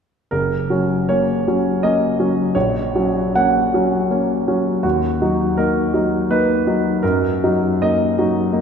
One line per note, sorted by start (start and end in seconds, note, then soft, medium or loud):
0.31 2.51 F#1 soft
0.31 1.09 A#4 soft
0.70 1.05 F#3 soft
0.70 1.06 C#4 soft
1.09 1.44 A#3 soft
1.09 1.44 C#4 soft
1.09 1.83 C#5 soft
1.48 1.80 F#3 soft
1.48 1.80 C#4 soft
1.83 2.16 A#3 soft
1.83 2.16 C#4 soft
1.83 2.55 D#5 soft
2.20 2.52 F#3 soft
2.20 2.52 C#4 soft
2.55 4.80 A#1 soft
2.55 3.35 C#5 soft
2.96 3.32 F#3 soft
2.96 3.32 C#4 soft
3.36 3.71 A#3 soft
3.36 3.71 C#4 soft
3.36 4.47 F#5 soft
3.74 4.07 F#3 soft
3.74 4.08 C#4 soft
4.10 4.43 A#3 soft
4.10 4.44 C#4 soft
4.48 4.80 F#3 soft
4.48 4.80 C#4 soft
4.83 6.98 D#2 soft
4.83 5.57 F#4 soft
5.22 5.54 F#3 soft
5.22 5.54 D#4 soft
5.57 5.90 A#3 soft
5.57 5.91 D#4 soft
5.57 6.29 A#4 soft
5.94 6.26 F#3 soft
5.94 6.26 D#4 soft
6.31 6.62 A#3 soft
6.31 6.63 D#4 soft
6.31 7.02 B4 medium
6.67 6.99 F#3 soft
6.67 6.99 D#4 soft
7.03 8.61 F#2 soft
7.03 7.81 A#4 soft
7.44 7.78 F#3 soft
7.44 7.78 D#4 soft
7.82 8.14 A#3 soft
7.82 8.14 D#4 soft
7.82 8.61 D#5 soft
8.19 8.50 F#3 soft
8.19 8.50 D#4 soft
8.53 8.61 A#3 soft
8.53 8.61 D#4 soft